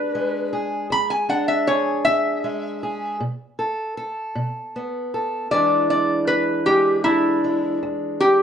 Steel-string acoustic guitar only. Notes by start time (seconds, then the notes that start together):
Already playing: E2 G#3 D4
0.15 G#3
0.53 G#4
0.90 E2
1.29 D4
1.68 G#4
2.05 E2
2.44 G#3
2.83 G#4
3.20 B2
3.59 A4
3.97 A4
4.35 B2
4.76 B3
5.14 A4
5.51 E2 E3 G#3 D4
6.67 E2 G#3
7.05 D4
7.44 G#3
7.83 E2